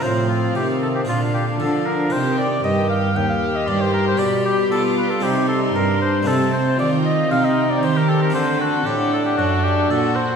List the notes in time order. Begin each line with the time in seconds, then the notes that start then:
0.00 A2 F3 C4 F4 C5 F5
0.29 F4
0.55 C3 D#3 G4
0.82 A4
0.95 G4
1.05 A#2 D3 D4 F4 F5
1.34 G4
1.59 D3 F3 A4 F5
1.86 A#4
2.10 C3 D#3 D#4 G4 C5 G5
2.38 D5
2.64 G2 D#3 G4 D#5
2.89 F5
3.15 D#2 D#3 G5
3.29 F5
3.56 D#5
3.67 G2 D5 C6
3.81 C5
3.94 A#4
4.07 C5
4.17 B2 G3 D4 G4 D5 B5
4.46 G4
4.71 B3 F4 A4 D6
4.97 B4
5.10 A4
5.20 C3 G3 C4 D#4 G4 C6
5.48 A4
5.75 G2 D4 A#4
6.01 C5
6.23 A3 C4 D#4
6.27 C3 C4 A4 A5
6.53 C5
6.78 D#3 F4 D5 G5
7.05 D#5
7.31 C3 D#4 F5
7.44 D#5
7.71 D5
7.82 D#3 G4 C5
7.97 A#4
8.09 A4
8.22 A#4
8.30 A3 D4
8.34 D3 A4 C5 F#5
8.61 F#4
8.86 A2 D4 G4
9.13 A4
9.25 G4
9.37 F#2 F#4 A4
9.63 G4
9.90 A#2 F#4 A4 F#5
10.16 C5